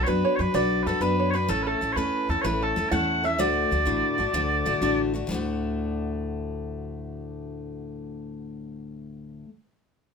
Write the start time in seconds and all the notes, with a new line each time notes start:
0.03 F#2 F#4 B4 C#5
0.07 B3 D4 B4
0.25 C#5
0.36 F#2 B4 C#5
0.40 D4 F#4 B4
0.54 B1 B3 D4 F#4 B4 D5
0.83 F#2 B3 A4 B4
0.88 D4 F#4 B4
1.01 F#2 B3 D4 F#4 B4
1.20 C#5
1.31 F#4 B4 C#5
1.35 D4 B4
1.48 A1 A2 A3 C#4 E4 A4
1.62 B4
1.67 A4
1.81 A1 A3 C#4 E4 A4
1.93 E2 B4 C#5
1.97 A2 A3 C#4 E4 A4
2.29 E2 C#4 E4 A4
2.41 A1 A2 A3 C#4 E4 B4 C#5
2.46 A4
2.62 A4
2.76 E2 A3 C#4 E4 A4
2.89 E2 A2 A3 C#4 E4 A4 F#5 A5
3.24 C#4 E4 A4 E5
3.38 D2 A2 D3 A3 D4 F#4 D5
3.71 D2 D3 A3 D4 F#4
3.85 A1 D2 A2 D3 A3 D4 F#4
4.18 A1 D3 A3 D4 F#4
4.33 D2 A2 D3 A3 D4 F#4
4.66 A1 D3 A3 D4 F#4
4.81 A1 D2 A2 D3 A3 D4 F#4
5.14 D3 A3 D4 F#4
5.27 D2 A2 D3
5.32 A3 D4 F#4